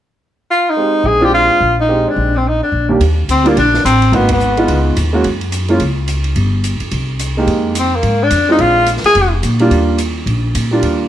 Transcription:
0.51 F4
0.70 D#4
0.77 G#3 C4 D#4 G4
1.04 A#1 G#4
1.20 G#3 C4 D4 F4
1.24 G4
1.34 F4
1.61 A#1
1.81 D#4
1.89 G#3 C4 D#4 G4
2.09 D4
2.16 A#1
2.37 C4
2.48 D#4
2.63 D4
2.72 A#1
2.89 D#2 G3 A#3 D4 G4
3.00 D#2, ride
3.29 D2 C4, hi-hat pedal, ride
3.44 G3 A#3 D4 F4, ride
3.57 A#1 D4, ride
3.74 snare
3.85 A1 C4, hi-hat pedal, ride
4.02 ride
4.12 G#1 A#3 B3 D#4 F#4, ride
4.29 B3, kick, ride
4.40 hi-hat pedal
4.57 G#3 B3 D#4 F4, ride
4.68 C#2, ride
4.97 D#2, hi-hat pedal, ride
5.13 G#3 A#3 C#4 F#4
5.24 F#2, ride
5.41 ride
5.52 hi-hat pedal, ride
5.68 G#3 A#3 C#4 F4, ride
5.80 C#2, ride
6.08 hi-hat pedal, ride
6.24 ride
6.36 G1, ride
6.64 hi-hat pedal, ride
6.80 muted upright bass stroke, ride
6.91 C2, ride
7.19 hi-hat pedal, ride
7.37 G#3 A#3 D#4 G4
7.47 F2, ride
7.75 hi-hat pedal, ride
7.79 C4
7.95 A#3
8.03 G#2, ride
8.23 D4
8.31 F2, hi-hat pedal, ride
8.49 G#3 C4 D4 D#4 F4
8.59 A#1 F4, ride
8.86 hi-hat pedal, ride
8.97 snare
9.04 G#4, muted upright bass stroke, snare, ride
9.15 F1, ride
9.43 A#2, hi-hat pedal, ride
9.59 G3 A#3 D4 F4, ride
9.70 D#2, ride
9.98 hi-hat pedal, ride
10.26 A#1, ride
10.55 A#2, hi-hat pedal, ride
10.71 G3 A#3 D4 F4
10.82 D#2, ride

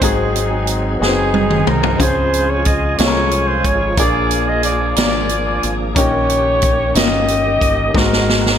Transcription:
Already playing: G#4
0.01 G#1 G#2 F#3 C4 D#4 F#4 G#4, kick, closed hi-hat
0.36 closed hi-hat
0.67 closed hi-hat
0.99 F#1 B3 C4 D#4 F#4 G#4, snare
1.06 C4
1.34 high tom
1.50 mid tom
1.67 C2 A#4, mid tom
1.83 floor tom
1.98 C#2 C#3 F3 G#3 C4 C#4 F4 G#4 C5, kick, closed hi-hat
2.02 F4
2.34 closed hi-hat
2.49 C#5
2.65 D#5, kick, closed hi-hat
2.98 C2 G#3 C#4 F4 G#4 A4 C#5, snare, closed hi-hat
3.07 A#4
3.31 closed hi-hat
3.47 C5
3.64 G#1 C#5, kick, closed hi-hat
3.97 A#1 A#2 A#3 D4 F4 G#4 D5, kick, closed hi-hat
4.31 closed hi-hat
4.48 D#5
4.63 D5, closed hi-hat
4.96 G#1 A#3 D4 F4 G#4 A#4 D5, snare, closed hi-hat
5.29 closed hi-hat
5.63 G#1, closed hi-hat
5.95 A#1 A#2 D#3 A#3 C#4 D#4 G4 C#5, kick, closed hi-hat
6.30 closed hi-hat
6.62 kick, closed hi-hat
6.94 G1 A#3 C#4 D#4 F4 G4 D#5, snare, closed hi-hat
7.28 closed hi-hat
7.61 G1, kick, closed hi-hat
7.94 G#1 G#2 G#3 C4 D#4 F#4 A#4, kick, snare
8.13 snare
8.29 snare
8.46 snare

